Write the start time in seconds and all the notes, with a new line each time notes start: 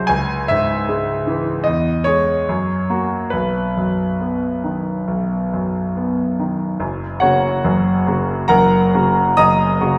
Already playing: C2 C3 F#3 G#3 C5 D#5
0.07 C#2 G#5
0.48 G#2 E5
0.89 G#3
1.27 E3
1.64 E2 D#5
2.04 G#3 G#4 C#5
2.49 F#2
2.90 A#3 F#4
3.30 B1 B4
3.77 F#2
4.20 B3
4.64 D#3
5.08 B1
5.54 F#2
5.97 B3
6.39 D#3
6.80 F#1 F#2
7.20 C#3 A#3 F#4 C#5 F#5
7.64 F#1 F#2
8.07 C#3 A#3 F#4
8.48 F#1 F#2 A#4 F#5 A#5
8.94 C#3 A#3 F#4
9.37 F#1 F#2 D#5 A#5 D#6
9.81 C#3 A#3 F#4